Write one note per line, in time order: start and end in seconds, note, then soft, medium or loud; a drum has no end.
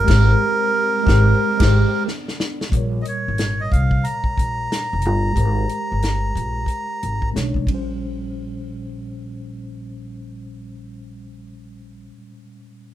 0.00 2.04 A#4 loud
0.04 0.29 G#3 loud
0.04 2.69 G#3 medium
0.04 2.04 C4 medium
0.04 0.31 G4 medium
0.04 2.04 G4 medium
0.04 kick loud
0.04 crash medium
0.09 0.32 G#1 loud
0.09 0.32 A#4 loud
0.09 0.34 C5 medium
0.09 snare loud
1.03 1.28 G#3 loud
1.03 1.30 G4 loud
1.03 kick loud
1.08 1.31 G#1 loud
1.08 1.31 A#4 loud
1.08 1.33 C5 loud
1.08 snare loud
1.57 1.82 G#1 loud
1.57 1.80 G#3 medium
1.57 1.81 G4 medium
1.57 kick loud
1.57 crash medium
1.62 1.82 A#4 medium
1.62 1.84 C5 loud
1.62 snare loud
2.06 2.71 B3 medium
2.06 2.71 D4 medium
2.06 snare medium
2.28 snare medium
2.40 snare loud
2.61 snare medium
2.69 3.01 A#1 medium
2.69 5.30 A#2 medium
2.69 5.31 G3 medium
2.69 kick loud
2.69 closed hi-hat medium
2.74 5.33 A#4 medium
2.74 5.34 C#5 medium
3.02 3.06 D#5 medium
3.02 closed hi-hat medium
3.08 3.61 C#5 medium
3.28 3.66 G#1 medium
3.38 snare loud
3.38 closed hi-hat medium
3.61 3.72 D#5 medium
3.72 4.00 C2 medium
3.72 4.05 F5 medium
3.72 kick medium
3.72 closed hi-hat medium
3.91 kick medium
4.04 7.29 A#5 medium
4.04 closed hi-hat medium
4.24 kick medium
4.38 4.66 A#1 medium
4.38 kick medium
4.38 closed hi-hat medium
4.72 snare loud
4.72 closed hi-hat medium
4.93 5.06 F1 medium
5.02 5.32 G1 medium
5.02 closed hi-hat medium
5.33 5.64 G#1 medium
5.33 7.28 G#3 medium
5.33 7.29 G4 medium
5.33 kick medium
5.33 closed hi-hat medium
5.38 7.31 A#4 medium
5.38 7.32 C5 medium
5.69 closed hi-hat medium
5.92 6.29 G1 medium
6.02 snare loud
6.02 closed hi-hat medium
6.35 6.64 A#1 medium
6.35 kick medium
6.35 closed hi-hat medium
6.66 kick medium
6.66 closed hi-hat medium
7.03 7.30 G#1 medium
7.03 closed hi-hat soft
7.22 kick medium
7.32 7.52 B1 medium
7.32 7.66 B2 medium
7.32 7.66 G#3 medium
7.32 7.42 C#4 soft
7.32 7.68 C#5 medium
7.32 snare medium
7.36 closed hi-hat medium
7.42 7.70 D4 medium
7.54 7.67 B1 medium
7.54 kick medium
7.60 12.06 A#2 medium
7.65 12.10 A#1 medium
7.65 12.08 G3 medium
7.65 kick medium
7.65 ride medium
7.70 12.11 C#4 medium
7.75 12.13 C5 medium